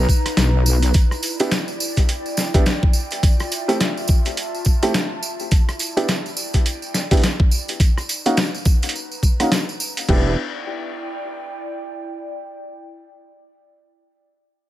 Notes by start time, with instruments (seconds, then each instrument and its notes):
Already playing: analog synth pad D#4 B4 A#5
0.09 kick, tambourine
0.26 cross-stick, closed hi-hat, tambourine
0.37 wobble bass B1, snare, closed hi-hat, tambourine
0.66 tambourine
0.82 closed hi-hat, tambourine
0.94 analog synth pad E4, kick, closed hi-hat, tambourine
1.11 cross-stick, tambourine
1.23 closed hi-hat, tambourine
1.30 analog synth pad D5
1.40 grand piano B3 D4 E4 G4, closed hi-hat, tambourine
1.51 snare, closed hi-hat, tambourine
1.68 tambourine
1.77 analog synth pad G5, tambourine
1.96 kick, closed hi-hat, tambourine
2.09 closed hi-hat, tambourine
2.26 tambourine
2.37 snare, tambourine
2.54 grand piano B3 D4 E4 G4, kick, closed hi-hat, tambourine
2.66 snare, closed hi-hat, tambourine
2.83 kick
2.93 tambourine
3.11 closed hi-hat, tambourine
3.23 analog synth pad F4, kick, closed hi-hat, tambourine
3.35 analog synth pad E5
3.40 cross-stick, tambourine
3.52 closed hi-hat, tambourine
3.68 grand piano A3 C4 E4 G4, closed hi-hat, tambourine
3.80 snare, closed hi-hat, tambourine
3.97 tambourine
4.08 kick, tambourine
4.25 analog synth pad A5, closed hi-hat, tambourine
4.37 closed hi-hat, tambourine
4.55 tambourine
4.65 kick, tambourine
4.82 grand piano A3 C4 E4 G4, cross-stick, closed hi-hat, tambourine
4.94 snare, closed hi-hat, tambourine
5.23 tambourine
5.40 tambourine
5.51 analog synth pad E4, kick, closed hi-hat, tambourine
5.69 cross-stick, tambourine
5.74 analog synth pad D5
5.79 closed hi-hat, tambourine
5.97 grand piano B3 D4 E4 G4, closed hi-hat, tambourine
6.08 snare, closed hi-hat, tambourine
6.26 analog synth pad G5, tambourine
6.37 tambourine
6.54 kick, closed hi-hat, tambourine
6.66 closed hi-hat, tambourine
6.82 tambourine
6.94 snare, tambourine
7.11 grand piano B3 D4 E4 G4, kick, closed hi-hat, tambourine
7.13 closed hi-hat
7.17 closed hi-hat
7.20 closed hi-hat
7.22 snare, closed hi-hat, tambourine
7.24 closed hi-hat
7.40 kick
7.51 tambourine
7.68 closed hi-hat, tambourine
7.80 analog synth pad D#4, kick, closed hi-hat, tambourine
7.98 cross-stick, tambourine
8.06 analog synth pad B4, closed hi-hat, tambourine
8.26 grand piano A#3 C#4 D#4 F#4, closed hi-hat, tambourine
8.37 snare, closed hi-hat, tambourine
8.54 tambourine
8.59 analog synth pad A#5
8.65 kick, tambourine
8.82 closed hi-hat, tambourine
8.89 closed hi-hat
8.95 tambourine
9.12 tambourine
9.23 kick, tambourine
9.40 grand piano A#3 C#4 D#4 F#4, cross-stick, closed hi-hat, tambourine
9.52 snare, closed hi-hat, tambourine
9.69 tambourine
9.80 tambourine
9.97 closed hi-hat, tambourine
10.09 wobble bass E1, grand piano B3 D4 E4 G4, analog synth pad E4, kick, crash
10.19 analog synth pad D5
10.28 analog synth pad G5